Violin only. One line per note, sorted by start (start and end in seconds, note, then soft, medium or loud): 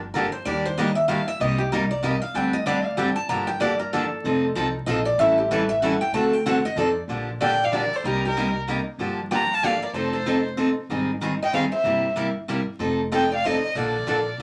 7.43 7.66 G5 medium
7.65 7.73 F5 medium
7.76 7.97 D5 medium
7.96 8.06 C5 medium
8.08 8.24 A#4 medium
8.27 8.55 A#4 medium
9.35 9.56 A#5 medium
9.55 9.67 A5 medium
9.66 9.83 F5 medium
9.85 9.95 D5 medium
9.97 10.13 C5 medium
10.16 10.44 C5 medium
11.44 11.53 G5 medium
11.55 11.63 F5 medium
11.73 12.14 E5 medium
13.15 13.33 G5 medium
13.36 13.48 F5 medium
13.46 13.78 D#5 medium
13.77 14.42 D5 medium